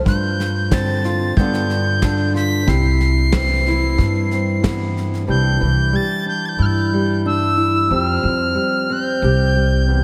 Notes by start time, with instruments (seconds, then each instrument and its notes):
0.05 steel-string acoustic guitar G2 F4, upright bass G2, tin whistle G6, kick, snare
0.40 snare
0.71 steel-string acoustic guitar D3 C4, tin whistle A6, kick, snare
1.04 steel-string acoustic guitar F4, snare
1.36 upright bass G2, steel-string acoustic guitar G2 D3 B3 D4 F4, tin whistle G6, kick, snare
1.53 snare
1.70 snare
2.02 steel-string acoustic guitar D3 D4, kick, snare
2.34 steel-string acoustic guitar F4, tin whistle B6, snare
2.67 upright bass C2, steel-string acoustic guitar C3 E4, tin whistle C7, kick, snare
3.00 snare
3.32 steel-string acoustic guitar E3 C4, kick, snare
3.66 steel-string acoustic guitar E4, snare
3.98 steel-string acoustic guitar G2, upright bass G2, kick, snare
4.31 steel-string acoustic guitar C4, snare
4.62 steel-string acoustic guitar E3 B3, kick, snare
4.97 snare
5.14 snare
5.27 upright bass C2, steel-string acoustic guitar C3 E3 G3 D4 E4, tin whistle G6
5.61 upright bass C2, steel-string acoustic guitar E3
5.93 steel-string acoustic guitar G3, tin whistle A6
6.26 steel-string acoustic guitar D4, tin whistle G6
6.46 tin whistle G6 A6
6.58 upright bass G2, steel-string acoustic guitar E4
6.62 tin whistle F6 G6
6.93 steel-string acoustic guitar G3
7.25 steel-string acoustic guitar D4, tin whistle E6
7.57 steel-string acoustic guitar E4
7.89 steel-string acoustic guitar F2 F3 G3 C4 G4, upright bass F2, tin whistle E6
8.05 tin whistle F6
8.23 upright bass F2
8.55 steel-string acoustic guitar G3
8.90 steel-string acoustic guitar C4, tin whistle G6
9.22 upright bass C2, steel-string acoustic guitar G4
9.56 steel-string acoustic guitar G3
9.89 steel-string acoustic guitar E2